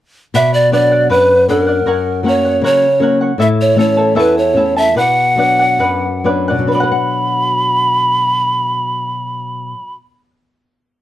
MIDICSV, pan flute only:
0, 0, Header, 1, 2, 480
1, 0, Start_track
1, 0, Key_signature, 2, "minor"
1, 0, Tempo, 763359
1, 214, Time_signature, 2, 2, 24, 8
1, 2614, Tempo, 820793
1, 3574, Tempo, 911854
1, 4054, Tempo, 956938
1, 6215, End_track
2, 0, Start_track
2, 0, Title_t, "Pan flute"
2, 0, Program_c, 0, 75
2, 219, Note_on_c, 0, 76, 80
2, 337, Note_on_c, 0, 74, 69
2, 346, Note_off_c, 0, 76, 0
2, 455, Note_off_c, 0, 74, 0
2, 460, Note_on_c, 0, 74, 74
2, 680, Note_off_c, 0, 74, 0
2, 701, Note_on_c, 0, 71, 71
2, 920, Note_off_c, 0, 71, 0
2, 937, Note_on_c, 0, 69, 74
2, 1025, Note_off_c, 0, 69, 0
2, 1025, Note_on_c, 0, 70, 74
2, 1389, Note_off_c, 0, 70, 0
2, 1432, Note_on_c, 0, 73, 70
2, 1645, Note_off_c, 0, 73, 0
2, 1670, Note_on_c, 0, 73, 77
2, 1995, Note_off_c, 0, 73, 0
2, 2148, Note_on_c, 0, 76, 81
2, 2185, Note_off_c, 0, 76, 0
2, 2271, Note_on_c, 0, 73, 66
2, 2374, Note_off_c, 0, 73, 0
2, 2388, Note_on_c, 0, 73, 77
2, 2607, Note_off_c, 0, 73, 0
2, 2632, Note_on_c, 0, 71, 81
2, 2744, Note_on_c, 0, 73, 83
2, 2753, Note_off_c, 0, 71, 0
2, 2970, Note_off_c, 0, 73, 0
2, 2974, Note_on_c, 0, 76, 86
2, 3091, Note_on_c, 0, 78, 102
2, 3100, Note_off_c, 0, 76, 0
2, 3814, Note_off_c, 0, 78, 0
2, 4059, Note_on_c, 0, 83, 79
2, 5673, Note_off_c, 0, 83, 0
2, 6215, End_track
0, 0, End_of_file